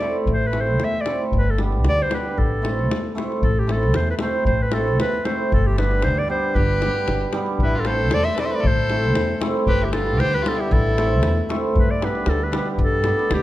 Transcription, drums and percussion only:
0.26 davul low
0.53 davul high
0.67 davul high
0.80 davul high
0.95 davul high
1.06 davul high
1.32 davul low
1.58 davul high
1.72 davul high
1.85 davul high
1.99 davul high
2.11 davul high
2.38 davul low
2.65 davul high
2.79 davul high
2.91 davul high
3.18 davul high
3.32 davul high
3.42 davul low
3.69 davul high
3.83 davul high
3.94 davul high
4.07 davul high
4.19 davul high
4.45 davul low
4.72 davul high
4.88 davul high
5.00 davul high
5.14 davul high
5.25 davul high
5.52 davul low
5.78 davul high
5.91 davul high
6.02 davul high
6.17 davul high
6.55 davul low
6.82 davul high
6.95 davul high
7.08 davul high
7.21 davul high
7.33 davul high
7.46 davul high
7.59 davul low
7.85 davul high
8.00 davul high
8.11 davul high
8.26 davul high
8.38 davul high
8.64 davul low
8.90 davul high
9.05 davul high
9.15 davul high
9.30 davul high
9.42 davul high
9.66 davul low
9.93 davul high
10.07 davul high
10.20 davul high
10.34 davul high
10.46 davul high
10.73 davul low
10.87 davul high
10.98 davul high
11.23 davul high
11.37 davul high
11.50 davul high
11.76 davul low
12.02 davul high
12.15 davul high
12.26 davul high
12.53 davul high
12.78 davul low
13.04 davul high
13.19 davul high
13.31 davul high

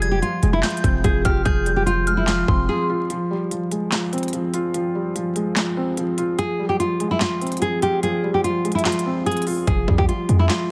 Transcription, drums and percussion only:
0.02 closed hi-hat
0.23 closed hi-hat
0.43 closed hi-hat
0.63 snare, clap, closed hi-hat
0.70 closed hi-hat
0.77 closed hi-hat
0.84 kick, closed hi-hat
1.04 kick, closed hi-hat
1.25 kick, closed hi-hat
1.46 kick, closed hi-hat
1.66 closed hi-hat
1.87 closed hi-hat
2.07 closed hi-hat
2.28 snare, clap, closed hi-hat
2.48 kick
3.10 closed hi-hat
3.51 closed hi-hat
3.71 closed hi-hat
3.92 snare, clap, closed hi-hat
4.13 closed hi-hat
4.18 closed hi-hat
4.23 closed hi-hat
4.28 closed hi-hat
4.33 closed hi-hat
4.54 closed hi-hat
4.74 closed hi-hat
5.16 closed hi-hat
5.36 closed hi-hat
5.56 snare, clap, closed hi-hat
5.97 closed hi-hat
6.18 closed hi-hat
6.39 closed hi-hat
6.80 closed hi-hat
7.00 closed hi-hat
7.21 snare, clap, closed hi-hat
7.41 closed hi-hat
7.47 closed hi-hat
7.52 closed hi-hat
7.57 closed hi-hat
7.62 closed hi-hat
7.82 closed hi-hat
8.03 closed hi-hat
8.44 closed hi-hat
8.65 closed hi-hat
8.72 closed hi-hat
8.79 closed hi-hat
8.85 snare, clap, closed hi-hat
8.92 closed hi-hat
8.99 closed hi-hat
9.26 closed hi-hat
9.32 closed hi-hat
9.37 closed hi-hat
9.42 closed hi-hat
9.47 open hi-hat
9.67 kick, closed hi-hat
9.88 kick
9.98 kick
10.09 closed hi-hat
10.29 closed hi-hat
10.50 snare, clap, closed hi-hat

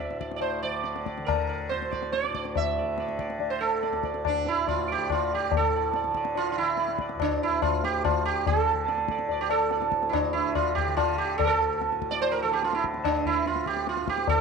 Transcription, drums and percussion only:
0.00 tabla te
0.10 tabla te
0.21 tabla ke
0.31 tabla te
0.41 tabla tin
0.84 tabla te
0.96 tabla te
1.06 tabla ke
1.18 tabla te
1.28 tabla na, tabla ge
1.72 tabla te
1.82 tabla te
1.93 tabla ke
2.03 tabla te
2.13 tabla te
2.24 tabla te
2.35 tabla ke
2.45 tabla te
2.56 tabla tin, tabla ge
2.98 tabla te
3.09 tabla te
3.19 tabla ke
3.30 tabla te
3.40 tabla tin
3.83 tabla te
3.93 tabla te
4.03 tabla ke
4.14 tabla te
4.25 tabla na, tabla ge
4.46 tabla te
4.68 tabla tin, tabla ge
5.10 tabla na, tabla ge
5.51 tabla tin, tabla ge
5.94 tabla te
6.04 tabla te
6.14 tabla ke
6.25 tabla te
6.35 tabla tin
6.77 tabla te
6.88 tabla te
6.99 tabla ke
7.09 tabla te
7.20 tabla na, tabla ge
7.62 tabla na, tabla ge
7.84 tabla te
8.05 tabla na, tabla ge
8.46 tabla tin, tabla ge
8.88 tabla te
8.98 tabla te
9.08 tabla ke
9.19 tabla te
9.29 tabla tin
9.50 tabla na
9.71 tabla te
9.82 tabla te
9.92 tabla ke
10.03 tabla te
10.13 tabla na, tabla ge
10.55 tabla na, tabla ge
10.77 tabla ge
10.97 tabla na, tabla ge
11.39 tabla tin, tabla ge
11.82 tabla te
11.92 tabla te
12.02 tabla ke
12.12 tabla te
12.23 tabla tin
12.63 tabla te
12.73 tabla te
12.84 tabla ke
12.94 tabla te
13.04 tabla na, tabla ge
13.25 tabla ge
13.46 tabla te
13.56 tabla te
13.66 tabla ke
13.77 tabla te
13.87 tabla te
13.97 tabla te
14.08 tabla ke
14.18 tabla te
14.27 tabla tin, tabla ge

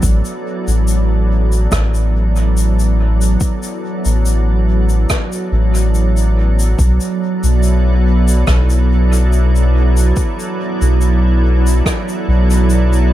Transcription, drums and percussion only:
0.03 kick, shaker
0.25 shaker
0.68 shaker
0.88 shaker
1.52 shaker
1.72 kick, cross-stick, shaker
1.94 shaker
2.36 shaker
2.57 shaker
2.79 shaker
3.21 shaker
3.40 kick, shaker
3.63 shaker
4.05 shaker
4.26 shaker
4.89 shaker
5.10 kick, cross-stick, shaker
5.32 shaker
5.75 shaker
5.94 shaker
6.17 shaker
6.59 shaker
6.79 kick, shaker
7.00 shaker
7.44 shaker
7.63 shaker
8.28 shaker
8.47 kick, cross-stick, shaker
8.70 shaker
9.13 shaker
9.32 shaker
9.56 shaker
9.97 shaker
10.16 kick, shaker
10.40 shaker
10.82 shaker
11.01 shaker
11.67 shaker
11.86 kick, cross-stick, shaker
12.08 shaker
12.50 shaker
12.70 shaker
12.93 shaker

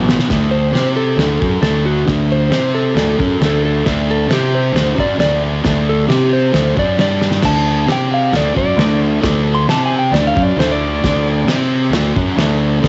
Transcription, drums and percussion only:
0.09 snare
0.19 snare
0.30 kick, snare, crash
0.75 snare, crash
1.19 snare, crash
1.42 kick
1.63 snare, crash
2.08 kick, snare, crash
2.52 snare, crash
2.97 snare, crash
3.20 kick
3.42 snare, crash
3.86 kick, snare, crash
4.31 snare, crash
4.76 snare, crash
4.98 kick
5.20 snare, crash
5.65 kick, snare, crash
6.10 snare, crash
6.54 snare, crash
6.77 kick
6.99 snare, crash
7.22 snare
7.31 snare
7.43 kick, snare, crash
7.89 snare, crash
8.33 snare, crash
8.57 kick
8.79 snare, crash
9.23 kick, snare, crash
9.69 snare, crash
10.14 snare, crash
10.37 kick
10.60 snare, crash
11.04 kick, snare, crash
11.48 snare, crash
11.93 snare, crash
12.16 kick
12.39 snare, crash
12.84 kick, snare, crash

